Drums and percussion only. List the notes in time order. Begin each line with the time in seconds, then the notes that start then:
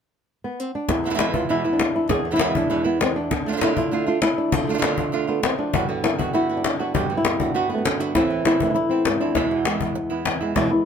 0.89 cajon bass, cajon slap
1.19 cajon slap
1.34 cajon bass
1.79 cajon slap
1.95 cajon slap
2.09 cajon bass, cajon slap
2.39 cajon slap
2.55 cajon bass
2.86 cajon slap
3.01 cajon slap
3.16 cajon slap
3.31 cajon bass, cajon slap
3.61 cajon slap
3.77 cajon bass
4.22 cajon slap
4.38 cajon slap
4.52 cajon bass
4.82 cajon slap
4.98 cajon bass
5.29 cajon slap
5.43 cajon slap
5.74 cajon bass
6.04 cajon slap
6.19 cajon bass
6.64 cajon slap
6.80 cajon slap
6.95 cajon bass
7.25 cajon slap
7.40 cajon bass
7.70 cajon slap
7.85 cajon slap
8.01 cajon slap
8.15 cajon bass, cajon slap
8.45 cajon slap
8.60 cajon bass
9.05 cajon slap
9.21 cajon slap
9.35 cajon bass, cajon slap
9.65 cajon slap
9.81 cajon bass
10.11 cajon slap
10.25 cajon slap
10.41 cajon slap
10.56 cajon bass, cajon slap